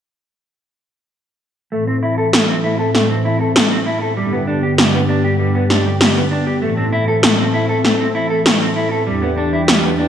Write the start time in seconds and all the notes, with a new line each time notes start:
1.72 A2 E3 A3 C4 A4
1.87 C4
2.03 E4
2.18 A4
2.33 A3, snare
2.49 C4
2.64 E4
2.79 A4
2.94 A3, snare
3.10 C4
3.25 E4
3.41 A4
3.56 A3, snare
3.71 C4
3.86 E4
4.02 A4
4.17 G2 D3 G3 B3 G4
4.32 B3
4.48 D4
4.63 G4
4.78 G3, snare
4.94 B3
5.09 D4
5.24 G4
5.40 G3
5.55 B3
5.70 D4, snare
5.86 G4
6.01 G3, snare
6.16 B3
6.31 D4
6.47 G4
6.62 A2 E3 A3 C4 A4
6.77 C4
6.93 E4
7.08 A4
7.23 A3, snare
7.39 C4
7.54 E4
7.69 A4
7.84 A3, snare
8.00 C4
8.15 E4
8.30 A4
8.46 A3, snare
8.61 C4
8.76 E4
8.92 A4
9.07 E2 G3 D4 G4
9.22 B3
9.37 D4
9.53 E4
9.68 G3, snare
9.84 B3
9.99 D4